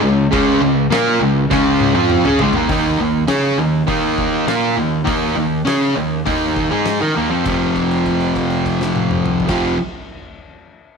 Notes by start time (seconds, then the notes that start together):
0.01 C#2 C#3 G#3
0.32 C#2 C#3 G#3 C#4, kick, crash
0.60 C#2 C#3 G#3
0.90 A#2 A#3 F4 A#4, snare, crash
1.19 C#2 C#3 G#3
1.51 C#2 C#3 G#3 C#4, kick, snare
1.80 high tom
1.94 F2 F3 C4 F4
2.10 mid tom
2.25 C#3 C#4 G#4, mid tom
2.38 C#2 C#3 G#3, floor tom
2.53 D#2 D#3 A#3, floor tom
2.69 D#2 D#3 A#3 D#4, kick, open hi-hat
2.98 D#2 D#3 A#3
3.28 C#3 C#4 G#4 C#5, snare, open hi-hat
3.58 D#2 D#3 A#3
3.87 D#2 D#3 A#3 D#4, kick, open hi-hat
4.18 kick
4.47 A#2 A#3 F4 A#4, snare, open hi-hat
4.76 D#2 D#3 A#3
5.04 D#2 D#3 A#3 D#4, kick, open hi-hat
5.36 D#2 D#3 A#3
5.65 C#3 C#4 G#4 C#5, snare, open hi-hat
5.96 D#2 D#3 A#3
6.25 D#2 D#3 A#3 D#4, kick, open hi-hat
6.56 kick
6.70 G#2 G#3 D#4 G#4
6.85 snare, open hi-hat
7.00 D#3 D#4 A#4
7.15 D#2 D#3 A#3
7.30 F2 F3 C4
7.44 F1 F2 C3 F3, kick, crash
7.76 kick, crash
7.91 crash
8.06 kick, crash
8.20 crash
8.36 kick, crash
8.50 crash
8.66 kick, crash
8.81 snare
8.96 high tom
9.11 mid tom
9.26 mid tom
9.40 floor tom
9.47 F1 F2 C3 F3, kick, snare, crash